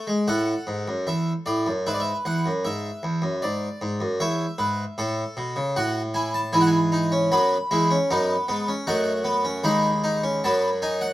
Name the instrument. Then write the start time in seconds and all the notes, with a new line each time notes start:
harpsichord
0.07 G#3
0.28 A2 A4 F#5
0.67 G#2
0.88 F#2
1.07 E2 E5
1.46 A2 D5
1.66 F#2
1.87 G#2 B4 E5
1.94 D5
2.00 E5
2.25 E2 F#5
2.46 F#2
2.65 G#2 E5
3.03 E2
3.22 F#2
3.42 G#2 D5
3.81 G#2
4.00 F#2
4.20 E2 C#5 E5
4.58 G#2 B4
4.98 A2 A4
5.37 B2
5.56 C#3
5.76 A2 F#4 F#5
6.14 E4 G#5
6.34 A5
6.53 G#2 E3 E4 G#5
6.61 F#5
6.67 G#5
6.92 D#4
7.12 C#4
7.32 F#2 F#3 B3 B5
7.71 E2 G#3 E4
7.91 C#4
8.11 F#2 B3 D#4
8.48 G#2 B3
8.68 C#4
8.87 F#2 A3 D#4 F#5
9.24 B3
9.45 C#4
9.64 D#2 G#3 D#4 B5
10.04 D#4
10.23 C#4
10.44 F#2 F#3 B3 A5
10.82 D#4 G#5
11.01 F#5